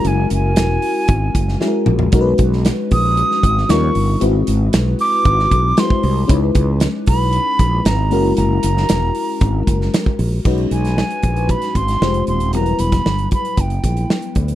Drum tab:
CC |----------------|----------------|----------------|----------------|
HH |x-x-x-o-x-x-----|x-x-x-o-x-x-x-o-|x-x-x-o-x-x-x-o-|x-x-x-o-x-x-x-o-|
SD |----o------oo---|---oo----o-oo---|----o----o--o---|----o-------o---|
T2 |--------------o-|----------------|----------------|----------------|
FT |---------------o|----------------|----------------|----------------|
BD |--------o-o-----|o-o---o---o-----|--------o-o--o--|o-o---o---o-----|

CC |----------------|x---------------|----------------|
HH |x-x-x-o-x-x-x-o-|-xxx-xxxxxxx-xxx|xxxx-xxxxxxx-xxx|
SD |---oo------oo---|---oo----o-oo---|---oo-------o---|
T2 |----------------|----------------|----------------|
FT |----------------|----------------|----------------|
BD |--------o-o--o--|o-----o-o-o-----|---o--o-o-o---o-|